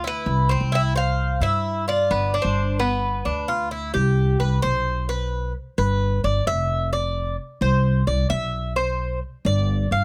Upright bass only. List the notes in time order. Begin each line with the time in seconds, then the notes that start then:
Already playing: D2
0.26 C2
0.61 C2
1.40 G2
2.10 G1
2.44 G1
3.25 D2
3.94 C2
4.40 C2
4.64 B1
5.78 G1
6.24 G1
6.47 F1
7.61 C2
8.07 C2
8.30 B1
9.45 G1
9.91 G1